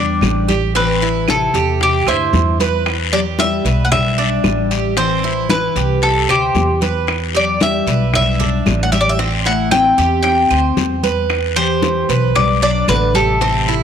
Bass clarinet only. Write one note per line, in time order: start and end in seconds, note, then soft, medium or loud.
0.00 0.72 G3 medium
0.78 1.26 E3 medium
1.30 1.78 C3 medium
1.82 2.06 C3 medium
2.09 2.57 G2 medium
3.13 3.25 F#3 medium
3.39 3.81 G3 medium
3.85 3.91 A3 medium
3.92 4.93 G3 medium
4.97 5.46 E3 medium
5.49 5.98 E3 medium
6.02 6.27 C3 medium
6.29 6.78 C3 medium
7.35 7.59 F#3 medium
7.61 8.10 G3 loud
8.15 8.79 G3 medium
8.83 8.91 A3 medium
8.93 9.01 G3 medium
9.02 9.10 F#3 medium
9.11 9.19 G3 medium
9.45 9.70 A3 medium
9.72 10.21 C4 medium
10.24 11.26 C4 medium
11.56 12.31 E3 medium
12.36 12.60 G3 medium
12.62 12.87 F#3 medium
12.88 13.13 D3 medium
13.15 13.83 C3 medium